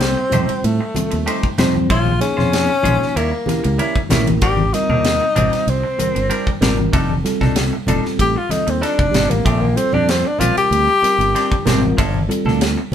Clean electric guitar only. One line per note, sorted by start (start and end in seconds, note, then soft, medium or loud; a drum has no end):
0.01 muted clean electric guitar stroke soft
0.17 muted clean electric guitar stroke soft
0.33 0.49 A3 medium
0.33 0.49 D#4 medium
0.33 0.48 G4 medium
0.33 0.48 C5 medium
0.50 muted clean electric guitar stroke soft
0.81 muted clean electric guitar stroke soft
0.96 muted clean electric guitar stroke soft
1.11 muted clean electric guitar stroke soft
1.26 1.46 A3 medium
1.26 1.46 D#4 medium
1.26 1.46 G4 medium
1.26 1.47 C5 medium
1.58 1.75 A3 medium
1.58 1.74 D#4 medium
1.58 1.74 G4 medium
1.58 1.74 C5 medium
1.75 muted clean electric guitar stroke soft
1.90 2.09 G#3 medium
1.90 2.10 C#4 medium
1.90 2.10 F4 medium
1.90 2.10 C5 medium
2.21 muted clean electric guitar stroke soft
2.37 2.51 C#4 soft
2.37 2.51 F4 medium
2.37 2.51 C5 medium
2.52 muted clean electric guitar stroke soft
2.69 muted clean electric guitar stroke soft
2.83 3.00 G#3 medium
2.83 3.00 C#4 medium
2.83 3.00 F4 medium
2.83 3.00 C5 medium
3.01 muted clean electric guitar stroke soft
3.16 3.32 G3 medium
3.16 3.32 C#4 medium
3.16 3.32 E4 medium
3.16 3.31 A#4 medium
3.32 muted clean electric guitar stroke soft
3.48 muted clean electric guitar stroke soft
3.64 muted clean electric guitar stroke soft
3.78 3.98 G3 medium
3.78 3.98 C#4 medium
3.78 3.98 E4 medium
3.78 3.99 A#4 medium
4.10 4.27 G3 medium
4.10 4.27 C#4 medium
4.10 4.27 E4 medium
4.10 4.27 A#4 medium
4.28 muted clean electric guitar stroke soft
4.42 4.61 G3 medium
4.42 4.62 C4 medium
4.42 4.62 D4 medium
4.42 4.62 A#4 medium
4.74 muted clean electric guitar stroke soft
4.90 5.04 C4 soft
4.90 5.04 D4 medium
4.90 5.04 A#4 medium
5.05 muted clean electric guitar stroke soft
5.21 muted clean electric guitar stroke soft
5.35 5.52 G3 medium
5.35 5.52 C4 medium
5.35 5.51 D4 medium
5.35 5.51 A#4 medium
5.52 muted clean electric guitar stroke soft
5.83 muted clean electric guitar stroke soft
5.99 muted clean electric guitar stroke soft
6.15 muted clean electric guitar stroke soft
6.30 6.49 G3 medium
6.30 6.49 C4 medium
6.30 6.50 D4 medium
6.30 6.50 A#4 medium
6.61 6.78 G3 medium
6.61 6.78 C4 medium
6.61 6.78 D4 medium
6.61 6.77 A#4 medium
6.79 muted clean electric guitar stroke soft
6.93 7.13 G3 medium
6.93 7.13 D4 medium
6.93 7.13 D#4 medium
6.93 7.13 A4 medium
7.26 muted clean electric guitar stroke soft
7.41 7.56 D4 soft
7.41 7.56 D#4 medium
7.41 7.56 A4 medium
7.56 muted clean electric guitar stroke soft
7.73 muted clean electric guitar stroke soft
7.88 8.04 G3 medium
7.88 8.04 D4 medium
7.88 8.04 D#4 medium
7.88 8.04 A4 medium
8.05 muted clean electric guitar stroke soft
8.36 muted clean electric guitar stroke soft
8.50 muted clean electric guitar stroke soft
8.67 muted clean electric guitar stroke soft
8.81 9.01 G3 medium
8.81 9.02 D4 medium
8.81 9.02 D#4 medium
8.81 9.02 A4 medium
9.14 9.31 G3 medium
9.14 9.30 D4 medium
9.14 9.30 D#4 medium
9.14 9.30 A4 medium
9.31 muted clean electric guitar stroke soft
9.45 9.65 F3 medium
9.45 9.65 C4 medium
9.45 9.65 D4 medium
9.45 9.65 G4 medium
9.77 muted clean electric guitar stroke soft
9.94 10.07 C4 soft
9.94 10.08 D4 soft
9.94 10.08 G4 medium
10.08 muted clean electric guitar stroke soft
10.25 muted clean electric guitar stroke soft
10.40 10.56 F3 medium
10.40 10.56 C4 medium
10.40 10.56 D4 medium
10.40 10.55 G4 medium
10.57 muted clean electric guitar stroke soft
10.88 muted clean electric guitar stroke soft
11.03 muted clean electric guitar stroke soft
11.20 muted clean electric guitar stroke soft
11.35 11.54 F3 medium
11.35 11.55 C4 medium
11.35 11.55 D4 medium
11.35 11.55 G4 medium
11.66 11.83 F3 medium
11.66 11.82 C4 medium
11.66 11.82 D4 medium
11.66 11.82 G4 medium
11.97 12.17 F3 medium
11.97 12.18 A#3 medium
11.97 12.18 D4 medium
11.97 12.18 A4 medium
12.29 muted clean electric guitar stroke soft
12.46 12.60 A#3 soft
12.46 12.61 D4 soft
12.46 12.60 A4 medium
12.61 muted clean electric guitar stroke soft
12.77 muted clean electric guitar stroke medium